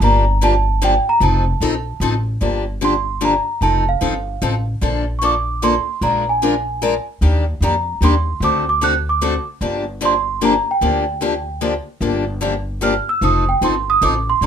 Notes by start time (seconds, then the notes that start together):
0.00 G1 D3 F3 A#3 D4 G4 A#5
0.41 D3 F3 A#3 D4 G4 A5
0.82 D3 F3 A#3 D4 G4 G5
1.09 A#5
1.20 F1 F3 C4 D#4 A4
1.60 A#1 F3 C4 D#4 A4
2.00 A1 F3 C4 D#4 A4
2.41 G1 D3 F3 A#3 D4 G4
2.81 D3 F3 A#3 D4 G4 C6
3.21 D3 F3 A#3 D4 G4
3.25 A#5
3.61 F1 F3 C4 D#4 A4 A5
3.89 F5
4.01 G1 F3 C4 D#4 A4
4.42 A1 F3 C4 D#4 A4
4.81 A#1 D3 F3 A#3 D4 A4
5.19 D3 F3 A#3 A4 C#6
5.23 D4 D6
5.62 D3 F3 A#3 D4 A4 C6
6.01 A#1 F3 G#3 D4 F4 A#4 A#5
6.29 G#5
6.42 F3 G#3 D4 F4 A#4
6.82 F3 G#3 D4 F4 A#4
7.21 D#2 D#3 G3 A#3 D4 G4
7.61 F2 D#3 G3 A#3 D4 G4 A#5
8.01 D#2 D#3 G3 A#3 D4 G4 C6
8.40 D2 D3 A3 C4 F#4 A4
8.44 D6
8.69 D6
8.81 D3 A3 C4 F#4 A4 F#6
9.09 D6
9.21 D3 A3 C4 F#4 A4
9.61 G1 D3 F3 A#3 D4 G4
10.01 D3 F3 A#3 D4 G4
10.05 C6
10.41 D3 F3 A#3 D4 G4 A#5
10.71 G5
10.81 D2 D3 F3 A#3 D4 G4
11.21 D3 F3 A#3 D4 G4
11.61 D3 F3 A#3 D4 G4
12.01 G1 D3 F3 A#3 D4 G4
12.41 D3 F3 A#3 D4 G4
12.81 D3 F3 A#3 D4 G4 F6
13.09 E6
13.21 F1 F3 C4 D#4 A4 D#6
13.49 G5
13.61 G1 F3 C4 D#4 A4 C6
13.90 D#6
14.02 A1 F3 C4 D#4 A4 D6
14.30 C6
14.41 A#1 D3 F3 A#3 D4 A4